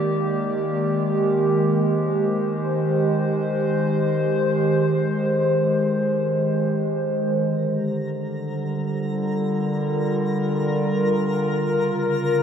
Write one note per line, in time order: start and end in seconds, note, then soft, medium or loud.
0.00 7.36 D#3 medium
0.00 7.38 G#3 medium
0.00 2.19 A#3 medium
0.00 9.08 G4 medium
0.00 0.66 D5 medium
1.75 9.07 C5 medium
7.35 11.62 D3 medium
7.35 12.43 A#4 medium
7.35 12.43 A#5 medium
8.14 11.62 G3 medium
8.74 12.43 F4 medium
9.31 12.43 A#4 medium
11.62 12.43 C#3 medium